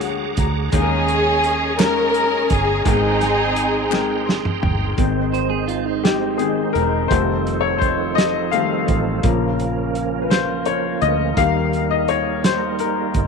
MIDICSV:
0, 0, Header, 1, 8, 480
1, 0, Start_track
1, 0, Key_signature, -4, "major"
1, 0, Tempo, 709220
1, 493, Time_signature, 6, 3, 24, 8
1, 8983, End_track
2, 0, Start_track
2, 0, Title_t, "French horn section"
2, 0, Program_c, 0, 60
2, 3371, Note_on_c, 0, 72, 57
2, 3371, Note_on_c, 0, 75, 65
2, 3372, Note_on_c, 0, 56, 53
2, 3377, Note_on_c, 0, 63, 64
2, 4799, Note_off_c, 0, 56, 0
2, 4801, Note_off_c, 0, 63, 0
2, 4816, Note_on_c, 0, 65, 64
2, 4816, Note_on_c, 0, 69, 55
2, 6226, Note_off_c, 0, 72, 0
2, 6226, Note_off_c, 0, 75, 0
2, 6241, Note_off_c, 0, 69, 0
2, 6256, Note_on_c, 0, 61, 57
2, 6263, Note_on_c, 0, 77, 67
2, 6265, Note_on_c, 0, 70, 57
2, 7669, Note_off_c, 0, 65, 0
2, 7681, Note_off_c, 0, 61, 0
2, 7685, Note_off_c, 0, 77, 0
2, 7696, Note_on_c, 0, 75, 71
2, 7702, Note_on_c, 0, 63, 63
2, 7702, Note_on_c, 0, 67, 61
2, 8983, Note_off_c, 0, 63, 0
2, 8983, Note_off_c, 0, 67, 0
2, 8983, Note_off_c, 0, 70, 0
2, 8983, Note_off_c, 0, 75, 0
2, 8983, End_track
3, 0, Start_track
3, 0, Title_t, "Tonewheel organ"
3, 0, Program_c, 1, 16
3, 0, Note_on_c, 1, 68, 66
3, 0, Note_on_c, 1, 78, 55
3, 0, Note_on_c, 1, 82, 58
3, 0, Note_on_c, 1, 86, 70
3, 475, Note_off_c, 1, 86, 0
3, 476, Note_off_c, 1, 78, 0
3, 491, Note_on_c, 1, 85, 70
3, 495, Note_on_c, 1, 75, 60
3, 1904, Note_off_c, 1, 68, 0
3, 1917, Note_off_c, 1, 85, 0
3, 1919, Note_off_c, 1, 75, 0
3, 1927, Note_on_c, 1, 68, 64
3, 1929, Note_on_c, 1, 79, 57
3, 1932, Note_on_c, 1, 84, 73
3, 3343, Note_off_c, 1, 82, 0
3, 3355, Note_off_c, 1, 68, 0
3, 3357, Note_off_c, 1, 79, 0
3, 3358, Note_off_c, 1, 84, 0
3, 3368, Note_on_c, 1, 63, 52
3, 3370, Note_on_c, 1, 56, 57
3, 3370, Note_on_c, 1, 60, 49
3, 3371, Note_on_c, 1, 72, 63
3, 4797, Note_off_c, 1, 56, 0
3, 4798, Note_off_c, 1, 72, 0
3, 4817, Note_on_c, 1, 53, 55
3, 4820, Note_on_c, 1, 69, 67
3, 6225, Note_off_c, 1, 63, 0
3, 6226, Note_off_c, 1, 60, 0
3, 6242, Note_off_c, 1, 53, 0
3, 6243, Note_off_c, 1, 69, 0
3, 6250, Note_on_c, 1, 53, 60
3, 6253, Note_on_c, 1, 61, 55
3, 6256, Note_on_c, 1, 58, 54
3, 6257, Note_on_c, 1, 70, 64
3, 7678, Note_off_c, 1, 53, 0
3, 7680, Note_off_c, 1, 61, 0
3, 7681, Note_on_c, 1, 63, 56
3, 7683, Note_on_c, 1, 55, 55
3, 8983, Note_off_c, 1, 55, 0
3, 8983, Note_off_c, 1, 58, 0
3, 8983, Note_off_c, 1, 63, 0
3, 8983, Note_off_c, 1, 70, 0
3, 8983, End_track
4, 0, Start_track
4, 0, Title_t, "Clean electric guitar"
4, 0, Program_c, 2, 27
4, 3611, Note_on_c, 2, 72, 64
4, 3718, Note_off_c, 2, 72, 0
4, 3721, Note_on_c, 2, 68, 63
4, 3841, Note_off_c, 2, 68, 0
4, 3843, Note_on_c, 2, 65, 66
4, 3960, Note_off_c, 2, 65, 0
4, 3960, Note_on_c, 2, 63, 61
4, 4660, Note_off_c, 2, 63, 0
4, 8983, End_track
5, 0, Start_track
5, 0, Title_t, "String section"
5, 0, Program_c, 3, 48
5, 496, Note_on_c, 3, 68, 103
5, 506, Note_on_c, 3, 61, 75
5, 1187, Note_off_c, 3, 68, 0
5, 1192, Note_off_c, 3, 61, 0
5, 1217, Note_on_c, 3, 70, 108
5, 1222, Note_on_c, 3, 61, 77
5, 1695, Note_off_c, 3, 70, 0
5, 1695, Note_on_c, 3, 68, 95
5, 1910, Note_off_c, 3, 61, 0
5, 1934, Note_off_c, 3, 68, 0
5, 1944, Note_on_c, 3, 63, 72
5, 1945, Note_on_c, 3, 68, 95
5, 1946, Note_on_c, 3, 60, 68
5, 2871, Note_off_c, 3, 63, 0
5, 2872, Note_off_c, 3, 60, 0
5, 2872, Note_off_c, 3, 68, 0
5, 8983, End_track
6, 0, Start_track
6, 0, Title_t, "Grand piano"
6, 0, Program_c, 4, 0
6, 0, Control_c, 4, 64, 127
6, 0, Note_on_c, 4, 50, 68
6, 0, Note_on_c, 4, 56, 76
6, 0, Note_on_c, 4, 58, 65
6, 0, Note_on_c, 4, 61, 69
6, 0, Note_on_c, 4, 66, 71
6, 0, Note_on_c, 4, 67, 69
6, 0, Note_on_c, 4, 68, 83
6, 0, Note_on_c, 4, 70, 85
6, 22, Note_on_c, 4, 78, 67
6, 241, Note_off_c, 4, 78, 0
6, 263, Note_on_c, 4, 82, 73
6, 333, Note_off_c, 4, 56, 0
6, 336, Note_off_c, 4, 61, 0
6, 340, Note_off_c, 4, 50, 0
6, 341, Note_off_c, 4, 66, 0
6, 365, Note_off_c, 4, 68, 0
6, 482, Note_off_c, 4, 82, 0
6, 487, Note_on_c, 4, 56, 74
6, 490, Note_off_c, 4, 58, 0
6, 490, Note_on_c, 4, 58, 69
6, 497, Note_on_c, 4, 61, 71
6, 499, Note_on_c, 4, 51, 61
6, 501, Note_on_c, 4, 63, 71
6, 503, Control_c, 4, 64, 0
6, 506, Note_off_c, 4, 70, 0
6, 507, Note_on_c, 4, 68, 70
6, 508, Note_off_c, 4, 67, 0
6, 544, Note_off_c, 4, 68, 0
6, 553, Note_on_c, 4, 70, 90
6, 615, Control_c, 4, 64, 127
6, 1053, Note_off_c, 4, 56, 0
6, 1055, Note_off_c, 4, 58, 0
6, 1058, Note_off_c, 4, 61, 0
6, 1060, Note_off_c, 4, 63, 0
6, 1087, Note_off_c, 4, 70, 0
6, 1189, Note_off_c, 4, 51, 0
6, 1202, Note_on_c, 4, 56, 65
6, 1209, Note_on_c, 4, 58, 57
6, 1213, Note_on_c, 4, 61, 59
6, 1219, Note_on_c, 4, 63, 54
6, 1221, Note_on_c, 4, 70, 75
6, 1771, Note_off_c, 4, 56, 0
6, 1774, Note_off_c, 4, 58, 0
6, 1776, Note_off_c, 4, 61, 0
6, 1780, Note_off_c, 4, 63, 0
6, 1780, Note_off_c, 4, 70, 0
6, 1921, Note_on_c, 4, 56, 73
6, 1927, Note_on_c, 4, 59, 51
6, 1932, Note_on_c, 4, 44, 64
6, 1932, Note_on_c, 4, 63, 69
6, 1936, Note_on_c, 4, 79, 67
6, 1942, Control_c, 4, 64, 0
6, 1944, Note_on_c, 4, 70, 80
6, 1972, Note_on_c, 4, 60, 67
6, 1974, Note_off_c, 4, 59, 0
6, 2065, Control_c, 4, 64, 127
6, 2490, Note_off_c, 4, 56, 0
6, 2496, Note_off_c, 4, 63, 0
6, 2498, Note_off_c, 4, 79, 0
6, 2502, Note_off_c, 4, 70, 0
6, 2516, Note_off_c, 4, 60, 0
6, 2625, Note_off_c, 4, 44, 0
6, 2637, Note_on_c, 4, 56, 71
6, 2644, Note_on_c, 4, 60, 67
6, 2649, Note_on_c, 4, 63, 67
6, 2654, Note_on_c, 4, 79, 67
6, 2661, Note_on_c, 4, 70, 78
6, 2881, Note_on_c, 4, 84, 59
6, 3110, Note_off_c, 4, 84, 0
6, 3113, Note_off_c, 4, 79, 0
6, 3123, Note_on_c, 4, 79, 68
6, 3208, Note_off_c, 4, 56, 0
6, 3212, Note_off_c, 4, 60, 0
6, 3214, Note_off_c, 4, 63, 0
6, 3220, Note_off_c, 4, 70, 0
6, 3351, Note_off_c, 4, 79, 0
6, 3369, Note_on_c, 4, 51, 44
6, 3374, Note_on_c, 4, 56, 41
6, 3375, Note_on_c, 4, 60, 48
6, 3382, Control_c, 4, 64, 0
6, 3509, Control_c, 4, 64, 127
6, 4085, Note_on_c, 4, 67, 66
6, 4310, Note_off_c, 4, 51, 0
6, 4311, Note_off_c, 4, 56, 0
6, 4314, Note_off_c, 4, 60, 0
6, 4315, Note_on_c, 4, 68, 62
6, 4320, Note_on_c, 4, 51, 39
6, 4321, Note_on_c, 4, 56, 35
6, 4324, Note_on_c, 4, 60, 44
6, 4336, Note_off_c, 4, 67, 0
6, 4542, Note_off_c, 4, 51, 0
6, 4542, Note_off_c, 4, 56, 0
6, 4544, Note_off_c, 4, 60, 0
6, 4555, Note_on_c, 4, 70, 75
6, 4572, Note_off_c, 4, 68, 0
6, 4793, Note_on_c, 4, 72, 78
6, 4803, Note_on_c, 4, 51, 46
6, 4806, Note_on_c, 4, 55, 43
6, 4812, Note_off_c, 4, 70, 0
6, 4813, Note_on_c, 4, 57, 53
6, 4822, Control_c, 4, 64, 0
6, 4930, Control_c, 4, 64, 127
6, 5127, Note_off_c, 4, 51, 0
6, 5129, Note_off_c, 4, 55, 0
6, 5133, Note_off_c, 4, 57, 0
6, 5148, Note_on_c, 4, 73, 72
6, 5174, Note_off_c, 4, 72, 0
6, 5268, Note_on_c, 4, 72, 76
6, 5285, Note_off_c, 4, 73, 0
6, 5517, Note_on_c, 4, 75, 87
6, 5529, Note_off_c, 4, 72, 0
6, 5763, Note_on_c, 4, 77, 78
6, 5770, Note_on_c, 4, 51, 39
6, 5771, Note_on_c, 4, 55, 35
6, 5773, Note_off_c, 4, 75, 0
6, 5775, Note_on_c, 4, 57, 43
6, 5988, Note_off_c, 4, 51, 0
6, 5988, Note_off_c, 4, 55, 0
6, 5991, Note_off_c, 4, 57, 0
6, 6222, Note_off_c, 4, 77, 0
6, 6246, Note_on_c, 4, 49, 49
6, 6248, Note_on_c, 4, 53, 44
6, 6252, Note_on_c, 4, 58, 57
6, 6264, Control_c, 4, 64, 0
6, 6397, Control_c, 4, 64, 127
6, 6917, Note_on_c, 4, 71, 54
6, 6944, Note_off_c, 4, 49, 0
6, 6944, Note_off_c, 4, 53, 0
6, 6946, Note_off_c, 4, 58, 0
6, 6969, Note_off_c, 4, 71, 0
6, 6974, Note_on_c, 4, 72, 77
6, 7215, Note_on_c, 4, 73, 72
6, 7222, Note_off_c, 4, 72, 0
6, 7438, Note_off_c, 4, 73, 0
6, 7456, Note_on_c, 4, 75, 86
6, 7695, Note_on_c, 4, 51, 47
6, 7698, Note_on_c, 4, 77, 90
6, 7700, Note_on_c, 4, 55, 46
6, 7700, Note_on_c, 4, 58, 51
6, 7703, Note_off_c, 4, 75, 0
6, 7703, Control_c, 4, 64, 0
6, 7819, Control_c, 4, 64, 127
6, 8014, Note_off_c, 4, 51, 0
6, 8017, Note_off_c, 4, 55, 0
6, 8017, Note_off_c, 4, 58, 0
6, 8058, Note_on_c, 4, 75, 77
6, 8067, Note_off_c, 4, 77, 0
6, 8168, Note_off_c, 4, 75, 0
6, 8180, Note_on_c, 4, 73, 77
6, 8424, Note_on_c, 4, 72, 78
6, 8425, Note_off_c, 4, 73, 0
6, 8477, Note_off_c, 4, 72, 0
6, 8662, Note_on_c, 4, 70, 65
6, 8983, Note_off_c, 4, 70, 0
6, 8983, End_track
7, 0, Start_track
7, 0, Title_t, "Fingered electric bass"
7, 0, Program_c, 5, 33
7, 0, Note_on_c, 5, 38, 95
7, 224, Note_off_c, 5, 38, 0
7, 256, Note_on_c, 5, 38, 82
7, 475, Note_off_c, 5, 38, 0
7, 496, Note_on_c, 5, 39, 90
7, 1667, Note_off_c, 5, 39, 0
7, 1697, Note_on_c, 5, 31, 74
7, 1916, Note_off_c, 5, 31, 0
7, 1934, Note_on_c, 5, 32, 89
7, 3106, Note_off_c, 5, 32, 0
7, 3133, Note_on_c, 5, 31, 75
7, 3354, Note_off_c, 5, 31, 0
7, 3372, Note_on_c, 5, 32, 79
7, 4545, Note_off_c, 5, 32, 0
7, 4572, Note_on_c, 5, 28, 66
7, 4793, Note_off_c, 5, 28, 0
7, 4813, Note_on_c, 5, 29, 84
7, 5987, Note_off_c, 5, 29, 0
7, 6016, Note_on_c, 5, 33, 72
7, 6236, Note_off_c, 5, 33, 0
7, 6256, Note_on_c, 5, 34, 80
7, 7429, Note_off_c, 5, 34, 0
7, 7458, Note_on_c, 5, 38, 76
7, 7677, Note_off_c, 5, 38, 0
7, 7697, Note_on_c, 5, 39, 81
7, 8869, Note_off_c, 5, 39, 0
7, 8899, Note_on_c, 5, 31, 67
7, 8983, Note_off_c, 5, 31, 0
7, 8983, End_track
8, 0, Start_track
8, 0, Title_t, "Drums"
8, 7, Note_on_c, 9, 42, 54
8, 75, Note_off_c, 9, 42, 0
8, 250, Note_on_c, 9, 42, 63
8, 255, Note_on_c, 9, 36, 96
8, 317, Note_off_c, 9, 42, 0
8, 322, Note_off_c, 9, 36, 0
8, 489, Note_on_c, 9, 42, 83
8, 493, Note_on_c, 9, 36, 99
8, 557, Note_off_c, 9, 42, 0
8, 561, Note_off_c, 9, 36, 0
8, 733, Note_on_c, 9, 42, 46
8, 800, Note_off_c, 9, 42, 0
8, 973, Note_on_c, 9, 42, 62
8, 1040, Note_off_c, 9, 42, 0
8, 1214, Note_on_c, 9, 39, 89
8, 1217, Note_on_c, 9, 38, 108
8, 1217, Note_on_c, 9, 42, 96
8, 1281, Note_off_c, 9, 39, 0
8, 1284, Note_off_c, 9, 42, 0
8, 1285, Note_off_c, 9, 38, 0
8, 1450, Note_on_c, 9, 42, 55
8, 1518, Note_off_c, 9, 42, 0
8, 1691, Note_on_c, 9, 42, 68
8, 1696, Note_on_c, 9, 36, 95
8, 1759, Note_off_c, 9, 42, 0
8, 1764, Note_off_c, 9, 36, 0
8, 1932, Note_on_c, 9, 42, 84
8, 1934, Note_on_c, 9, 36, 107
8, 2000, Note_off_c, 9, 42, 0
8, 2002, Note_off_c, 9, 36, 0
8, 2174, Note_on_c, 9, 42, 49
8, 2180, Note_on_c, 9, 38, 32
8, 2241, Note_off_c, 9, 42, 0
8, 2248, Note_off_c, 9, 38, 0
8, 2411, Note_on_c, 9, 42, 64
8, 2479, Note_off_c, 9, 42, 0
8, 2650, Note_on_c, 9, 39, 89
8, 2661, Note_on_c, 9, 38, 53
8, 2717, Note_off_c, 9, 39, 0
8, 2728, Note_off_c, 9, 38, 0
8, 2904, Note_on_c, 9, 38, 77
8, 2972, Note_off_c, 9, 38, 0
8, 3013, Note_on_c, 9, 45, 64
8, 3081, Note_off_c, 9, 45, 0
8, 3132, Note_on_c, 9, 43, 91
8, 3200, Note_off_c, 9, 43, 0
8, 3369, Note_on_c, 9, 42, 75
8, 3371, Note_on_c, 9, 36, 91
8, 3436, Note_off_c, 9, 42, 0
8, 3438, Note_off_c, 9, 36, 0
8, 3615, Note_on_c, 9, 42, 42
8, 3682, Note_off_c, 9, 42, 0
8, 3848, Note_on_c, 9, 42, 40
8, 3915, Note_off_c, 9, 42, 0
8, 4094, Note_on_c, 9, 42, 90
8, 4095, Note_on_c, 9, 38, 101
8, 4162, Note_off_c, 9, 38, 0
8, 4162, Note_off_c, 9, 42, 0
8, 4325, Note_on_c, 9, 42, 47
8, 4393, Note_off_c, 9, 42, 0
8, 4570, Note_on_c, 9, 42, 43
8, 4637, Note_off_c, 9, 42, 0
8, 4810, Note_on_c, 9, 36, 97
8, 4812, Note_on_c, 9, 42, 74
8, 4878, Note_off_c, 9, 36, 0
8, 4880, Note_off_c, 9, 42, 0
8, 5054, Note_on_c, 9, 42, 41
8, 5121, Note_off_c, 9, 42, 0
8, 5290, Note_on_c, 9, 36, 73
8, 5291, Note_on_c, 9, 42, 40
8, 5358, Note_off_c, 9, 36, 0
8, 5359, Note_off_c, 9, 42, 0
8, 5537, Note_on_c, 9, 42, 89
8, 5538, Note_on_c, 9, 38, 99
8, 5605, Note_off_c, 9, 42, 0
8, 5606, Note_off_c, 9, 38, 0
8, 5769, Note_on_c, 9, 42, 50
8, 5837, Note_off_c, 9, 42, 0
8, 6010, Note_on_c, 9, 42, 44
8, 6014, Note_on_c, 9, 36, 84
8, 6078, Note_off_c, 9, 42, 0
8, 6081, Note_off_c, 9, 36, 0
8, 6249, Note_on_c, 9, 42, 77
8, 6252, Note_on_c, 9, 36, 99
8, 6317, Note_off_c, 9, 42, 0
8, 6320, Note_off_c, 9, 36, 0
8, 6495, Note_on_c, 9, 42, 44
8, 6562, Note_off_c, 9, 42, 0
8, 6735, Note_on_c, 9, 42, 39
8, 6803, Note_off_c, 9, 42, 0
8, 6980, Note_on_c, 9, 42, 87
8, 6981, Note_on_c, 9, 38, 102
8, 7048, Note_off_c, 9, 38, 0
8, 7048, Note_off_c, 9, 42, 0
8, 7211, Note_on_c, 9, 42, 49
8, 7279, Note_off_c, 9, 42, 0
8, 7456, Note_on_c, 9, 42, 42
8, 7523, Note_off_c, 9, 42, 0
8, 7695, Note_on_c, 9, 36, 93
8, 7695, Note_on_c, 9, 42, 80
8, 7763, Note_off_c, 9, 36, 0
8, 7763, Note_off_c, 9, 42, 0
8, 7941, Note_on_c, 9, 42, 42
8, 8008, Note_off_c, 9, 42, 0
8, 8177, Note_on_c, 9, 42, 41
8, 8245, Note_off_c, 9, 42, 0
8, 8421, Note_on_c, 9, 42, 88
8, 8422, Note_on_c, 9, 38, 102
8, 8489, Note_off_c, 9, 42, 0
8, 8490, Note_off_c, 9, 38, 0
8, 8655, Note_on_c, 9, 42, 49
8, 8722, Note_off_c, 9, 42, 0
8, 8895, Note_on_c, 9, 42, 46
8, 8898, Note_on_c, 9, 36, 84
8, 8963, Note_off_c, 9, 42, 0
8, 8966, Note_off_c, 9, 36, 0
8, 8983, End_track
0, 0, End_of_file